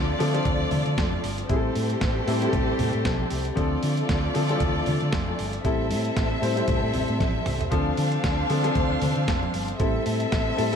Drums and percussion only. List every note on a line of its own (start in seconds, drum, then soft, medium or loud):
0.20 open hi-hat medium
0.35 closed hi-hat soft
0.45 kick loud
0.45 closed hi-hat medium
0.45 muted conga medium
0.45 low conga medium
0.71 open hi-hat medium
0.71 muted conga medium
0.71 low conga medium
0.86 closed hi-hat soft
0.98 kick loud
0.98 snare loud
0.98 closed hi-hat medium
0.98 high conga medium
1.12 high conga medium
1.24 open hi-hat medium
1.38 closed hi-hat soft
1.49 kick loud
1.49 closed hi-hat medium
1.49 muted conga soft
1.76 open hi-hat medium
1.76 muted conga soft
1.90 closed hi-hat soft
2.01 kick loud
2.01 snare loud
2.01 closed hi-hat medium
2.01 high conga medium
2.28 open hi-hat medium
2.42 closed hi-hat medium
2.53 kick loud
2.53 closed hi-hat medium
2.53 muted conga medium
2.53 low conga medium
2.79 open hi-hat medium
2.79 muted conga medium
2.79 low conga medium
2.93 closed hi-hat soft
3.05 kick loud
3.05 snare loud
3.05 closed hi-hat medium
3.05 high conga medium
3.19 high conga medium
3.30 open hi-hat medium
3.45 closed hi-hat soft
3.57 kick loud
3.57 closed hi-hat medium
3.57 muted conga soft
3.83 open hi-hat medium
3.97 closed hi-hat soft
4.09 kick loud
4.09 snare loud
4.09 closed hi-hat medium
4.09 high conga medium
4.35 open hi-hat medium
4.49 closed hi-hat medium
4.60 kick loud
4.60 closed hi-hat medium
4.60 muted conga medium
4.60 low conga medium
4.86 open hi-hat medium
4.86 muted conga medium
4.86 low conga medium
5.00 closed hi-hat soft
5.12 kick loud
5.12 snare loud
5.12 closed hi-hat medium
5.12 high conga medium
5.27 high conga medium
5.39 open hi-hat medium
5.53 closed hi-hat soft
5.64 kick loud
5.64 closed hi-hat medium
5.64 muted conga soft
5.91 open hi-hat medium
5.91 muted conga soft
6.05 closed hi-hat soft
6.17 kick loud
6.17 snare loud
6.17 closed hi-hat medium
6.17 high conga medium
6.43 open hi-hat medium
6.57 closed hi-hat medium
6.68 kick loud
6.68 closed hi-hat medium
6.68 muted conga medium
6.68 low conga medium
6.94 open hi-hat medium
6.94 muted conga soft
6.94 low conga medium
7.08 closed hi-hat soft
7.20 kick loud
7.20 snare medium
7.20 closed hi-hat medium
7.20 high conga medium
7.35 high conga medium
7.46 mid tom medium
7.46 open hi-hat medium
7.61 closed hi-hat soft
7.61 floor tom medium
7.72 kick loud
7.72 closed hi-hat medium
7.72 muted conga soft
7.97 open hi-hat medium
7.97 muted conga soft
8.12 closed hi-hat soft
8.24 kick loud
8.24 snare loud
8.24 closed hi-hat medium
8.24 high conga medium
8.50 open hi-hat medium
8.64 closed hi-hat medium
8.75 kick loud
8.75 closed hi-hat medium
8.75 muted conga medium
8.75 low conga medium
9.02 open hi-hat medium
9.02 muted conga medium
9.02 low conga medium
9.16 closed hi-hat soft
9.28 kick loud
9.28 snare loud
9.28 closed hi-hat medium
9.28 high conga medium
9.43 high conga medium
9.54 open hi-hat medium
9.68 closed hi-hat soft
9.80 kick loud
9.80 closed hi-hat medium
9.80 muted conga soft
10.06 open hi-hat medium
10.06 muted conga soft
10.20 closed hi-hat soft
10.32 kick loud
10.32 snare loud
10.32 closed hi-hat medium
10.32 high conga medium
10.58 open hi-hat medium